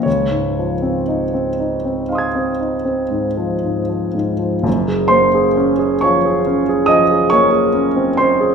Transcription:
0.03 4.62 C#2 soft
0.03 4.15 C#5 soft
0.30 0.73 G#2 soft
0.59 1.00 F3 soft
0.82 1.24 C4 soft
1.08 1.49 D#4 soft
1.34 1.75 C4 soft
1.59 2.00 D#4 soft
1.85 2.26 C4 soft
2.09 2.51 D#4 soft
2.09 4.61 F5 soft
2.09 4.63 C6 soft
2.15 4.64 D#6 soft
2.15 4.66 G#6 soft
2.35 2.76 C4 soft
2.60 3.01 D#4 soft
2.85 3.27 C4 soft
3.11 3.53 G#2 soft
3.37 3.80 F3 soft
3.64 4.06 G#2 soft
3.89 4.32 F3 soft
4.15 4.56 G#2 soft
4.39 4.64 F3 soft
4.62 8.55 F#1 soft
4.62 8.55 F#2 soft
4.88 5.26 G#4 soft
5.08 5.47 A#3 soft
5.08 5.97 C5 medium
5.08 6.01 C6 medium
5.35 5.71 G#4 soft
5.57 5.94 C#4 soft
5.79 6.16 G#4 soft
6.01 6.39 F3 soft
6.01 6.86 C#5 medium
6.01 6.89 C#6 medium
6.25 6.60 G#4 soft
6.47 6.82 C#4 soft
6.69 7.03 G#4 soft
6.86 7.24 F3 soft
6.86 7.28 D#5 medium
6.86 7.31 D#6 medium
7.11 7.45 G#4 soft
7.30 7.67 A#3 soft
7.30 8.14 C#5 medium
7.30 8.17 C#6 medium
7.51 7.87 G#4 soft
7.74 8.09 C#4 soft
7.96 8.18 C4 soft
8.17 8.53 C#4 soft
8.17 8.55 C5 soft
8.17 8.55 C6 medium
8.41 8.55 G#4 soft

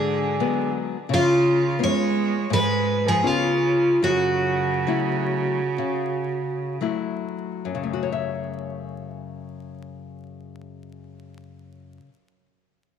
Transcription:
0.00 0.37 G#2 medium
0.00 0.71 D3 medium
0.00 0.71 G#4 medium
0.40 0.96 F#3 medium
0.40 0.96 G#3 soft
0.40 0.97 B3 medium
1.09 1.77 C#3 medium
1.09 1.76 C#3 medium
1.14 1.78 F4 medium
1.79 2.48 G#3 medium
1.79 2.36 B3 medium
1.79 2.36 C#4 soft
1.79 2.36 F4 medium
1.84 2.53 C#5 medium
2.50 3.22 G#2 medium
2.50 3.03 G#3 medium
2.50 3.09 B4 loud
3.06 3.27 F3 medium
3.06 3.27 G#4 medium
3.23 4.03 C#3 medium
3.23 3.87 B3 soft
3.23 3.87 C#4 soft
3.23 3.88 F4 medium
3.23 4.03 F4 medium
4.03 4.85 F#2 medium
4.03 6.77 C#3 medium
4.03 6.77 F#4 medium
4.87 5.60 F#3 medium
4.87 5.61 A3 soft
4.87 5.61 E4 medium
5.78 6.78 C#3 medium
6.81 7.68 F#3 soft
6.81 7.69 A3 soft
6.81 7.69 E4 medium
7.65 11.98 F#2 soft
7.75 12.08 C#3 soft
7.83 12.17 A3 soft
7.93 8.12 F#4 soft
8.03 12.36 C#5 soft
8.12 12.46 E5 medium

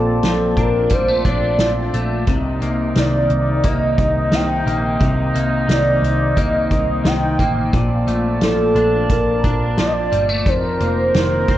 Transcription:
0.00 0.19 A#1 medium
0.00 2.28 A#2 medium
0.00 0.23 F3 soft
0.00 2.23 C4 medium
0.00 0.57 D4 medium
0.00 2.24 F4 medium
0.00 0.62 A4 medium
0.00 2.24 D5 medium
0.00 2.24 A5 medium
0.23 0.53 A#1 medium
0.23 1.59 F3 medium
0.23 snare medium
0.23 closed hi-hat medium
0.57 0.87 A#1 medium
0.57 1.25 D4 medium
0.57 0.95 A#4 medium
0.57 kick medium
0.57 closed hi-hat soft
0.90 1.21 A#1 medium
0.90 1.08 G3 medium
0.90 1.30 C5 loud
0.90 kick medium
0.90 closed hi-hat medium
1.08 1.93 A3 soft
1.25 1.55 A#1 medium
1.25 3.00 D4 medium
1.25 1.95 D5 medium
1.25 kick medium
1.25 closed hi-hat soft
1.58 1.89 A#1 medium
1.58 2.35 F3 soft
1.58 snare medium
1.58 closed hi-hat medium
1.94 2.24 A#1 medium
1.94 2.35 A3 soft
1.94 closed hi-hat medium
2.27 2.58 C2 medium
2.27 7.69 C3 medium
2.27 4.99 C3 medium
2.27 7.69 A#3 medium
2.27 10.42 C4 medium
2.27 7.69 D#4 medium
2.27 kick medium
2.27 closed hi-hat soft
2.62 2.92 C2 medium
2.62 3.64 A#3 medium
2.62 closed hi-hat medium
2.96 3.27 C2 medium
2.96 4.31 D#3 medium
2.96 3.69 D5 medium
2.96 snare loud
2.96 closed hi-hat medium
3.30 3.60 C2 medium
3.30 closed hi-hat soft
3.64 3.94 C2 medium
3.64 4.66 A#3 medium
3.64 4.36 D#5 medium
3.64 kick medium
3.64 closed hi-hat medium
3.98 4.28 C2 medium
3.98 kick medium
3.98 closed hi-hat soft
4.32 4.62 C2 medium
4.32 5.67 D#3 soft
4.32 5.02 G5 medium
4.32 snare loud
4.32 closed hi-hat medium
4.66 4.96 A#1 medium
4.66 5.34 A#3 soft
4.66 closed hi-hat medium
5.00 5.30 C2 medium
5.00 7.73 C3 medium
5.00 kick medium
5.00 closed hi-hat soft
5.34 5.65 C2 medium
5.34 6.36 A#3 medium
5.34 closed hi-hat medium
5.68 5.99 C2 medium
5.68 7.03 D#3 medium
5.68 6.40 D5 medium
5.68 snare medium
5.68 closed hi-hat medium
6.02 6.32 C2 medium
6.02 closed hi-hat medium
6.37 6.67 C2 medium
6.37 7.39 A#3 medium
6.37 7.08 D#5 medium
6.37 kick medium
6.37 closed hi-hat medium
6.71 7.01 C2 loud
6.71 kick medium
6.71 closed hi-hat soft
7.05 7.35 C2 loud
7.05 7.80 D#3 soft
7.05 7.74 G5 medium
7.05 snare loud
7.05 closed hi-hat medium
7.39 7.69 A1 medium
7.39 8.07 A#3 medium
7.39 kick medium
7.39 closed hi-hat soft
7.73 8.03 A#1 medium
7.73 10.46 A#2 medium
7.73 10.43 F4 medium
7.73 10.43 D5 medium
7.73 10.43 A5 medium
7.73 kick medium
7.73 closed hi-hat soft
8.07 8.37 A#1 medium
8.07 9.10 A3 medium
8.07 closed hi-hat medium
8.41 8.71 A#1 medium
8.41 9.77 F3 medium
8.41 9.12 A4 medium
8.41 snare loud
8.41 closed hi-hat medium
8.75 9.05 A#1 medium
8.75 9.43 D4 medium
8.75 closed hi-hat soft
9.09 9.40 A#1 medium
9.09 9.78 A#4 medium
9.09 kick medium
9.09 closed hi-hat medium
9.44 9.74 A#1 medium
9.44 10.53 D4 medium
9.44 kick medium
9.44 closed hi-hat soft
9.78 10.08 A#1 medium
9.78 11.14 F3 medium
9.78 9.88 D5 medium
9.78 snare medium
9.78 closed hi-hat medium
9.87 9.94 D#5 medium
9.93 10.50 D5 loud
10.12 10.46 G1 medium
10.12 10.29 G3 medium
10.12 closed hi-hat medium
10.29 10.53 A3 soft
10.46 10.76 F1 loud
10.46 11.58 F2 medium
10.46 11.58 F3 medium
10.46 11.58 C4 medium
10.46 11.58 D#4 medium
10.46 11.58 A#4 medium
10.46 11.58 C5 medium
10.46 kick medium
10.46 closed hi-hat soft
10.80 11.10 F1 medium
10.80 11.58 A#3 medium
10.80 closed hi-hat medium
11.14 11.45 F1 medium
11.14 11.58 D#3 medium
11.14 snare loud
11.14 closed hi-hat medium
11.48 11.58 F1 medium
11.48 11.58 C4 medium
11.48 kick medium
11.48 closed hi-hat soft

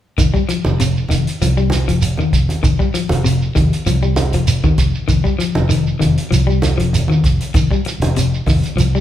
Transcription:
0.18 0.32 F1 medium
0.18 0.27 D#3 medium
0.18 kick medium
0.18 closed hi-hat medium
0.18 shekere medium
0.34 0.42 G3 medium
0.34 kick medium
0.34 shekere soft
0.49 0.66 F3 medium
0.49 muted fingered electric bass stroke soft
0.49 closed hi-hat soft
0.49 shekere medium
0.65 1.04 F1 medium
0.65 high conga medium
0.65 shekere soft
0.79 0.97 C3 medium
0.79 closed hi-hat medium
0.79 shekere medium
0.97 shekere soft
1.09 1.24 F1 medium
1.09 1.27 D#3 medium
1.09 closed hi-hat soft
1.09 high conga medium
1.09 shekere medium
1.27 closed hi-hat soft
1.27 shekere soft
1.41 1.90 C2 medium
1.41 1.51 F3 medium
1.41 closed hi-hat medium
1.41 shekere medium
1.57 1.75 G3 medium
1.57 shekere soft
1.70 closed hi-hat soft
1.70 high conga medium
1.70 shekere medium
1.88 2.14 F1 medium
1.88 2.05 F3 medium
1.88 closed hi-hat soft
1.88 shekere soft
2.02 closed hi-hat medium
2.02 shekere medium
2.17 2.36 D#3 medium
2.17 high conga medium
2.17 shekere soft
2.33 2.47 F1 medium
2.33 kick medium
2.33 closed hi-hat soft
2.33 shekere medium
2.49 closed hi-hat soft
2.49 high conga medium
2.49 shekere soft
2.63 2.77 F1 medium
2.63 2.72 D#3 medium
2.63 kick medium
2.63 closed hi-hat medium
2.63 shekere medium
2.79 2.88 G3 medium
2.79 kick medium
2.79 shekere soft
2.93 3.12 F3 medium
2.93 muted fingered electric bass stroke soft
2.93 closed hi-hat soft
2.93 shekere medium
3.09 3.49 F1 medium
3.09 closed hi-hat soft
3.09 high conga medium
3.09 shekere soft
3.24 3.42 C3 medium
3.24 closed hi-hat medium
3.24 shekere medium
3.42 shekere soft
3.55 3.70 F1 medium
3.55 3.73 D#3 medium
3.55 kick medium
3.55 closed hi-hat soft
3.55 high conga medium
3.55 shekere medium
3.73 closed hi-hat soft
3.73 shekere soft
3.86 4.34 C2 medium
3.86 3.96 F3 medium
3.86 closed hi-hat medium
3.86 shekere medium
4.03 4.20 G3 medium
4.03 shekere soft
4.16 closed hi-hat soft
4.16 high conga medium
4.16 shekere medium
4.33 4.59 F1 medium
4.33 4.52 F3 medium
4.33 closed hi-hat soft
4.33 shekere soft
4.47 closed hi-hat medium
4.47 shekere medium
4.64 4.82 D#3 medium
4.64 kick medium
4.64 high conga medium
4.64 shekere soft
4.78 4.92 F1 medium
4.78 kick medium
4.78 closed hi-hat soft
4.78 shekere medium
4.95 shekere soft
5.08 5.24 F1 medium
5.08 5.18 D#3 medium
5.08 kick medium
5.08 closed hi-hat medium
5.08 shekere medium
5.24 5.33 G3 medium
5.24 kick medium
5.24 shekere soft
5.39 5.57 F3 medium
5.39 muted fingered electric bass stroke soft
5.39 closed hi-hat soft
5.39 shekere medium
5.55 5.94 F1 medium
5.55 high conga medium
5.55 shekere soft
5.69 5.87 D#3 medium
5.69 closed hi-hat medium
5.69 shekere medium
5.87 shekere soft
5.99 6.16 F1 medium
5.99 6.18 D#3 medium
5.99 closed hi-hat soft
5.99 high conga medium
5.99 shekere medium
6.18 closed hi-hat soft
6.18 shekere soft
6.31 6.80 C2 medium
6.31 6.41 F3 medium
6.31 closed hi-hat medium
6.31 shekere medium
6.47 6.65 G3 medium
6.47 shekere soft
6.62 closed hi-hat soft
6.62 high conga medium
6.62 shekere medium
6.78 7.05 F1 medium
6.78 6.96 F3 medium
6.78 closed hi-hat soft
6.78 shekere soft
6.93 closed hi-hat medium
6.93 high conga medium
6.93 shekere medium
7.08 7.27 D#3 medium
7.08 high conga medium
7.08 shekere soft
7.24 7.38 F1 medium
7.24 kick medium
7.24 closed hi-hat soft
7.24 shekere medium
7.40 closed hi-hat medium
7.40 shekere soft
7.54 7.69 F1 medium
7.54 7.64 D#3 medium
7.54 kick medium
7.54 closed hi-hat medium
7.54 shekere medium
7.71 7.80 G3 medium
7.71 kick medium
7.71 shekere soft
7.85 muted fingered electric bass stroke soft
7.85 muted clean electric guitar stroke medium
7.85 closed hi-hat soft
7.85 shekere medium
8.00 8.39 F1 medium
8.00 closed hi-hat soft
8.00 high conga medium
8.00 shekere soft
8.16 8.34 C3 medium
8.16 closed hi-hat medium
8.16 shekere medium
8.34 shekere soft
8.46 8.61 F1 medium
8.46 8.65 D#3 medium
8.46 kick medium
8.46 open hi-hat medium
8.46 high conga medium
8.46 shekere medium
8.63 closed hi-hat soft
8.63 shekere soft
8.76 9.01 C2 medium
8.76 8.87 F3 medium
8.76 closed hi-hat medium
8.80 shekere medium
8.95 9.01 G3 medium
8.95 shekere soft

